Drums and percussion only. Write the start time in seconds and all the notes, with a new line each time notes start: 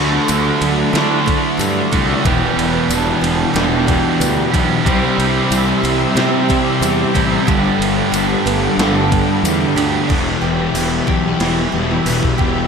0.13 snare
0.28 ride, tambourine
0.62 ride
0.95 snare, ride
1.28 kick, ride
1.59 ride, tambourine
1.93 kick, ride
2.25 kick, ride
2.59 ride
2.90 ride, tambourine
3.24 ride
3.56 snare, ride
3.88 kick, ride
4.21 ride, tambourine
4.54 kick, ride
4.86 kick, ride
5.20 ride
5.52 ride, tambourine
5.85 ride
6.17 snare, ride
6.50 kick, ride
6.82 ride, tambourine
7.15 kick, ride
7.48 kick, ride
7.82 ride
8.14 ride, tambourine
8.47 ride
8.79 snare, ride
9.12 kick, ride
9.45 ride, tambourine
9.78 ride
10.10 kick, crash
10.75 tambourine, crash
11.08 kick
11.40 snare, crash
11.91 snare
12.06 tambourine, crash
12.23 kick
12.39 kick